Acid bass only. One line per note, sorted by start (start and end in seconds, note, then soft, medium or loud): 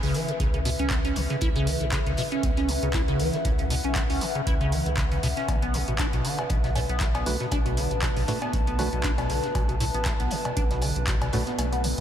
0.03 0.16 C#3 loud
0.14 0.30 E3 loud
0.28 0.32 C#3 loud
0.40 0.48 C#3 medium
0.54 0.60 C#3 medium
0.65 0.70 B2 loud
0.79 0.92 C#4 medium
0.91 0.99 B3 loud
1.05 1.18 C#4 medium
1.16 1.21 C#3 medium
1.30 1.36 C#3 medium
1.42 1.49 E4 loud
1.56 1.69 C#3 loud
1.67 1.83 E3 loud
1.81 1.85 C#3 loud
1.93 2.00 C#3 medium
2.06 2.13 C#3 medium
2.18 2.23 B2 loud
2.32 2.45 C#4 medium
2.43 2.51 B3 loud
2.57 2.70 C#4 medium
2.69 2.73 C#3 medium
2.83 2.89 C#3 medium
2.94 3.02 E4 loud
3.08 3.21 C#3 medium
3.20 3.35 E3 loud
3.34 3.37 C#3 loud
3.45 3.53 C#3 medium
3.59 3.65 C#3 medium
3.71 3.75 B2 loud
3.84 3.97 C#4 medium
3.96 4.04 B3 loud
4.10 4.23 C#4 medium
4.21 4.26 C#3 medium
4.35 4.42 C#3 medium
4.47 4.54 E4 loud
4.61 4.74 C#3 loud
4.72 4.88 E3 loud
4.86 4.90 C#3 loud
4.98 5.05 C#3 medium
5.12 5.18 C#3 medium
5.23 5.28 B2 loud
5.37 5.50 C#4 medium
5.49 5.56 A3 loud
5.62 5.75 B3 medium
5.74 5.78 B2 medium
5.88 5.94 B2 medium
5.99 6.07 D4 loud
6.13 6.26 B2 medium
6.25 6.40 D3 loud
6.39 6.42 B2 loud
6.50 6.58 B2 medium
6.64 6.70 B2 medium
6.76 6.80 A2 loud
6.89 7.02 B3 medium
7.01 7.09 A3 loud
7.15 7.28 B3 medium
7.26 7.31 B2 medium
7.40 7.47 B2 medium
7.52 7.60 D4 loud
7.66 7.79 B2 medium
7.77 7.93 D3 loud
7.91 7.95 B2 loud
8.03 8.10 B2 medium
8.17 8.23 B2 medium
8.28 8.33 A2 loud
8.42 8.55 B3 medium
8.53 8.61 A3 loud
8.67 8.80 B3 medium
8.79 8.83 B2 medium
8.93 8.99 B2 medium
9.04 9.12 D4 loud
9.18 9.31 B2 medium
9.30 9.45 D3 loud
9.44 9.47 B2 loud
9.55 9.63 B2 medium
9.69 9.75 B2 medium
9.80 9.85 A2 loud
9.94 10.07 B3 medium
10.06 10.14 A3 loud
10.20 10.33 B3 medium
10.31 10.36 B2 medium
10.45 10.52 B2 medium
10.57 10.64 D4 loud
10.71 10.84 B2 medium
10.82 10.98 D3 loud
10.96 11.00 B2 medium
11.08 11.15 B2 medium
11.22 11.28 B2 medium
11.33 11.38 A2 loud
11.47 11.60 B3 medium
11.58 11.66 A3 loud
11.72 11.85 B3 medium
11.84 11.89 B2 medium